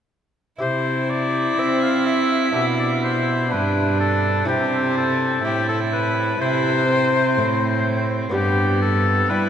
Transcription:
0.59 1.55 C3 medium
0.59 2.49 E4 soft
0.59 3.48 E4 medium
0.59 2.50 G4 soft
0.59 1.11 C5 medium
1.10 1.61 D5 medium
1.59 2.51 C4 medium
1.59 2.53 C4 medium
1.59 1.84 E5 medium
1.83 2.05 F5 medium
2.06 2.54 E5 medium
2.52 3.53 B2 medium
2.52 3.48 B2 soft
2.52 4.43 D4 soft
2.52 4.44 G4 soft
2.52 2.66 E5 medium
2.80 2.90 D5 medium
3.04 3.53 C5 medium
3.51 4.44 G2 medium
3.51 4.48 G2 medium
3.51 4.49 D4 medium
3.51 4.00 B4 medium
4.00 4.47 A4 medium
4.45 5.40 C3 medium
4.45 5.43 C3 medium
4.45 5.43 C4 medium
4.45 8.29 E4 medium
4.45 8.29 G4 soft
4.45 4.95 G4 medium
4.97 5.44 A4 medium
5.44 6.37 A2 medium
5.44 6.39 A2 medium
5.44 6.39 E4 medium
5.44 5.68 G4 medium
5.69 5.79 A4 medium
5.93 6.41 B4 medium
6.41 7.34 C3 soft
6.41 7.39 C3 medium
6.41 6.88 E4 medium
6.41 8.07 C5 loud
6.89 8.31 C4 medium
7.37 8.33 A2 medium
7.37 8.30 A2 medium
8.29 9.28 G2 medium
8.29 9.49 B3 soft
8.29 9.49 D4 medium
8.29 9.49 G4 medium
8.34 9.26 G2 medium
8.34 9.31 B3 medium
8.34 8.79 G4 medium
8.82 9.31 A4 medium
9.30 9.49 G3 medium
9.30 9.49 E4 medium
9.30 9.49 B4 medium

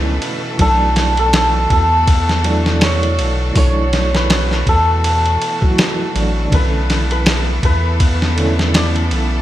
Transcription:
0.00 0.19 C#2 medium
0.00 6.48 B2 medium
0.00 0.61 D3 medium
0.00 0.57 E3 medium
0.00 6.48 E3 medium
0.00 0.61 A3 medium
0.00 0.61 C#4 loud
0.00 6.48 A4 medium
0.00 0.55 B4 medium
0.00 0.11 D5 medium
0.00 1.06 E5 loud
0.22 ride medium
0.57 1.67 B1 loud
0.57 2.40 E3 medium
0.57 2.41 F#3 medium
0.57 2.41 A3 medium
0.57 6.48 F#4 medium
0.57 kick loud
0.57 ride medium
0.61 2.42 D4 medium
0.61 1.19 A4 medium
0.96 snare medium
0.96 ride medium
1.17 1.72 A4 loud
1.17 ride soft
1.33 snare loud
1.33 ride medium
1.70 3.20 E2 loud
1.70 4.65 A4 loud
1.70 kick loud
1.70 ride medium
2.07 kick loud
2.07 ride medium
2.29 snare soft
2.43 2.63 E3 medium
2.43 2.64 F#3 medium
2.43 2.64 A3 medium
2.43 2.64 D4 loud
2.43 ride medium
2.66 snare soft
2.81 3.57 C#5 medium
2.81 snare loud
2.81 ride medium
3.03 ride soft
3.19 3.52 B1 medium
3.19 ride medium
3.53 4.64 B1 medium
3.53 5.36 E3 medium
3.53 5.36 F#3 medium
3.53 5.37 A3 medium
3.53 kick loud
3.53 open hi-hat medium
3.57 5.38 D4 medium
3.57 6.12 C#5 loud
3.93 snare soft
3.93 ride medium
4.15 6.54 B4 medium
4.15 snare medium
4.30 snare loud
4.30 ride medium
4.51 snare soft
4.67 5.38 E2 loud
4.67 7.62 A4 medium
4.67 kick medium
4.67 ride medium
5.04 ride medium
5.26 ride soft
5.42 ride medium
5.61 5.76 E3 medium
5.61 5.76 F#3 medium
5.61 5.77 A3 medium
5.61 5.77 F#4 medium
5.61 kick loud
5.78 snare loud
5.78 ride medium
6.13 6.48 A1 medium
6.13 6.47 E3 medium
6.13 6.48 F#3 medium
6.13 6.48 A3 medium
6.13 6.49 D4 medium
6.13 ride medium
6.49 7.60 B1 medium
6.49 8.32 D3 medium
6.49 8.33 E3 medium
6.49 9.42 E3 medium
6.49 8.34 A3 medium
6.49 9.42 B3 medium
6.49 9.42 E4 medium
6.49 9.42 A4 medium
6.49 kick loud
6.49 ride medium
6.54 8.34 C#4 medium
6.54 7.11 B4 loud
6.90 snare soft
6.90 ride medium
7.11 7.65 B4 medium
7.11 ride soft
7.26 snare loud
7.26 ride medium
7.63 9.13 E2 loud
7.63 9.42 B4 loud
7.63 kick loud
7.63 ride medium
8.00 kick loud
8.00 ride medium
8.22 snare soft
8.36 8.56 D3 medium
8.36 8.57 E3 medium
8.36 8.57 A3 medium
8.36 8.58 C#4 loud
8.36 ride medium
8.59 snare soft
8.74 9.42 D5 medium
8.74 snare loud
8.74 ride medium
8.96 ride soft
9.11 9.42 B1 medium
9.11 ride medium

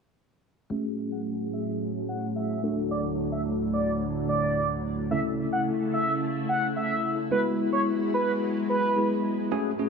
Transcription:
0.70 2.62 A2 medium
0.70 5.07 F#3 medium
0.70 2.59 A3 medium
0.70 2.59 C#4 medium
0.70 2.60 F#4 medium
0.70 2.61 G#4 medium
0.70 2.60 G#4 medium
0.70 0.79 E5 loud
1.12 1.21 F#5 medium
1.53 1.71 E5 medium
2.09 2.26 F#5 medium
2.36 2.75 E5 medium
2.63 5.08 D2 medium
2.63 5.08 A2 medium
2.63 4.79 A3 medium
2.63 4.80 D4 medium
2.63 4.80 F#4 medium
2.63 4.80 A4 medium
2.91 3.00 D5 loud
3.32 3.41 E5 medium
3.73 3.91 D5 medium
4.29 4.67 D5 medium
5.11 7.27 C#3 medium
5.11 7.29 C#3 medium
5.11 7.27 A3 medium
5.11 7.29 A3 medium
5.11 7.27 C#4 medium
5.11 9.47 E4 medium
5.11 7.27 E4 medium
5.11 7.27 A4 medium
5.11 5.20 E5 loud
5.53 5.61 F#5 medium
5.94 6.12 E5 medium
6.49 6.67 F#5 medium
6.76 7.15 E5 medium
7.31 9.49 F#3 medium
7.31 8.93 G#3 medium
7.31 9.49 G#3 medium
7.31 8.93 B3 medium
7.31 8.93 E4 medium
7.31 8.93 F#4 medium
7.31 7.40 B4 loud
7.73 7.82 C#5 medium
8.14 8.32 B4 medium
8.69 9.08 B4 medium
8.96 9.51 G#3 soft
8.96 9.51 B3 soft
8.96 9.51 E4 soft
8.96 9.51 G#4 medium
9.51 9.89 A2 medium
9.51 9.89 F#3 medium
9.51 9.89 G#3 medium
9.51 9.70 A3 loud
9.51 9.70 C#4 medium
9.51 9.70 F#4 medium
9.51 9.70 G#4 loud
9.79 9.89 A3 medium
9.79 9.89 C#4 medium
9.79 9.89 F#4 medium
9.79 9.89 G#4 medium

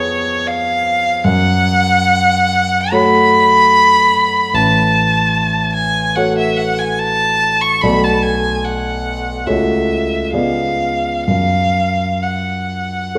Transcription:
0.00 1.20 F2 medium
0.00 1.20 B3 soft
0.00 1.20 G#4 soft
0.00 0.49 C#5 medium
0.00 1.20 C#5 medium
0.48 1.26 F5 medium
1.24 4.51 F#2 medium
1.24 2.93 F#5 loud
2.92 4.51 A3 soft
2.92 4.51 F#4 medium
2.92 4.51 C#5 medium
2.92 4.56 B5 loud
4.54 7.79 A1 medium
4.54 5.75 A5 medium
5.75 6.17 G#5 medium
6.16 7.79 A3 soft
6.16 7.79 F#4 soft
6.16 7.79 C#5 soft
6.16 6.37 F#5 medium
6.38 6.59 E5 medium
6.57 6.80 F#5 medium
6.79 7.01 G#5 medium
6.99 7.63 A5 medium
7.62 7.83 C#6 medium
7.82 9.43 B1 medium
7.82 9.43 A3 soft
7.82 9.43 F#4 soft
7.82 9.43 D5 soft
7.82 8.06 B5 medium
8.04 8.25 A5 medium
8.23 8.67 G#5 medium
8.65 9.48 F#5 medium
9.46 10.31 C#2 soft
9.46 10.29 A3 soft
9.46 10.30 F#4 soft
9.46 10.30 C#5 soft
9.46 10.33 E5 medium
10.33 11.24 C#2 soft
10.33 11.23 B3 soft
10.33 11.23 G#4 soft
10.33 11.23 D5 soft
10.33 11.25 F5 medium
11.27 13.18 F#2 soft
11.27 12.24 F5 medium
12.23 13.18 F#5 medium
13.15 13.18 A3 soft
13.15 13.18 A4 soft

